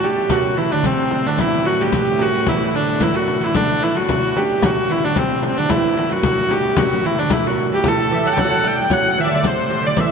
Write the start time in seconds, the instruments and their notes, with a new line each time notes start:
Already playing: viola da gamba A2
0.02 lute G2, hurdy-gurdy G4, riq, frame drum
0.29 lute F#2, viola da gamba A2, hurdy-gurdy F#4, riq, frame drum
0.57 lute E2, hurdy-gurdy E4
0.71 lute D2, hurdy-gurdy D4
0.83 lute C3, hurdy-gurdy C4, riq, frame drum
1.11 hurdy-gurdy C4, frame drum
1.26 lute D2, hurdy-gurdy D4
1.38 lute E2, hurdy-gurdy E4, riq, frame drum
1.65 lute F#2, hurdy-gurdy F#4
1.81 lute G2, hurdy-gurdy G4
1.92 riq, frame drum
2.19 lute F#2, hurdy-gurdy F#4, frame drum
2.46 lute E2, hurdy-gurdy E4, riq, frame drum
2.75 lute D2, hurdy-gurdy D4
3.00 lute E2, hurdy-gurdy E4, riq, frame drum
3.14 lute F#2, hurdy-gurdy F#4
3.28 frame drum
3.41 lute E2, hurdy-gurdy E4
3.55 lute D2, hurdy-gurdy D4, riq, frame drum
3.82 lute E2, hurdy-gurdy E4, riq
3.95 lute F#2, hurdy-gurdy F#4
4.09 riq, frame drum
4.36 lute G2, hurdy-gurdy G4, frame drum
4.62 lute F#2, viola da gamba A2, hurdy-gurdy F#4, riq, frame drum
4.89 lute E2, hurdy-gurdy E4
5.03 lute D2, hurdy-gurdy D4
5.16 lute C3, hurdy-gurdy C4, riq, frame drum
5.43 lute C3, hurdy-gurdy C4, frame drum
5.56 lute D2, hurdy-gurdy D4
5.69 lute E2, hurdy-gurdy E4, riq, frame drum
5.96 lute E2, hurdy-gurdy E4
6.09 lute F#2, hurdy-gurdy F#4
6.23 riq, frame drum
6.49 lute G2, hurdy-gurdy G4, frame drum
6.77 lute F#2, hurdy-gurdy F#4, riq, frame drum
7.04 lute E2, hurdy-gurdy E4
7.18 lute D2, hurdy-gurdy D4
7.30 lute E2, hurdy-gurdy E4, riq, frame drum
7.47 lute F#2, hurdy-gurdy F#4
7.72 lute G2, hurdy-gurdy G4
7.84 lute A2, riq, frame drum
7.88 hurdy-gurdy A4
8.11 lute E3, hurdy-gurdy E5, riq, frame drum
8.25 lute F#3, hurdy-gurdy F#5
8.33 hurdy-gurdy G5, riq
8.37 lute F#3, hurdy-gurdy F#5, frame drum
8.44 lute F#3
8.51 lute F#3
8.64 lute G3, hurdy-gurdy G5, frame drum
8.90 viola da gamba A2, lute F#3, hurdy-gurdy F#5, riq, frame drum
9.18 lute E3, hurdy-gurdy E5
9.24 lute E3, hurdy-gurdy D5 E5
9.31 lute D3, hurdy-gurdy D5
9.43 lute C3, hurdy-gurdy C5, riq, frame drum
9.70 lute C3, hurdy-gurdy C5
9.82 lute D3
9.87 hurdy-gurdy D5
9.97 lute E3, hurdy-gurdy E5, riq, frame drum